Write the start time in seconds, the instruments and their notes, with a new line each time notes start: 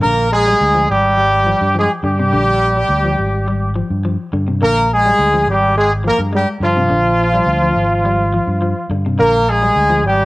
0.02 fingered electric bass A#1, clean electric guitar D3, horn section A#3 A#4
0.33 horn section G#3 G#4
0.46 clean electric guitar G3
0.61 fingered electric bass D2
0.74 clean electric guitar F3
0.89 fingered electric bass G#1, horn section G3 G4
1.18 clean electric guitar G3
1.46 clean electric guitar F3
1.61 fingered electric bass G2
1.75 clean electric guitar F3, horn section G#3 G#4
2.03 fingered electric bass G2, clean electric guitar D3, horn section G3 G4
2.19 clean electric guitar C3
2.32 fingered electric bass A#1, clean electric guitar D3
2.77 clean electric guitar G3
2.89 fingered electric bass D2
3.04 clean electric guitar F3
3.18 fingered electric bass G#1
3.48 clean electric guitar G3
3.76 clean electric guitar F3
3.90 fingered electric bass G2
4.05 clean electric guitar F3
4.33 fingered electric bass G2, clean electric guitar D3
4.48 clean electric guitar C3
4.62 fingered electric bass A#1, clean electric guitar D3, horn section A#3 A#4
4.94 horn section G#3 G#4
5.06 clean electric guitar G3
5.19 fingered electric bass D2
5.34 clean electric guitar F3
5.47 fingered electric bass G#1, horn section G3 G4
5.76 horn section G#3 G#4, muted clean electric guitar stroke
6.04 clean electric guitar F3, horn section A#3 A#4
6.19 fingered electric bass G2
6.33 horn section G3 G4, clean electric guitar G#3
6.60 fingered electric bass G2, clean electric guitar D3, horn section F3 F4
6.77 clean electric guitar C3
6.90 fingered electric bass A#1, clean electric guitar D3
7.34 clean electric guitar G3
7.46 fingered electric bass D2
7.62 clean electric guitar F3
7.76 fingered electric bass G#1
8.05 clean electric guitar G3
8.34 clean electric guitar F3
8.47 fingered electric bass G2
8.62 clean electric guitar F3
8.90 fingered electric bass G2, clean electric guitar D3
9.06 clean electric guitar C3
9.19 fingered electric bass A#1, clean electric guitar D3, horn section A#3 A#4
9.50 horn section G#3 G#4
9.62 clean electric guitar G3
9.76 fingered electric bass D2
9.90 clean electric guitar F3
10.03 fingered electric bass G#1, horn section G3 G4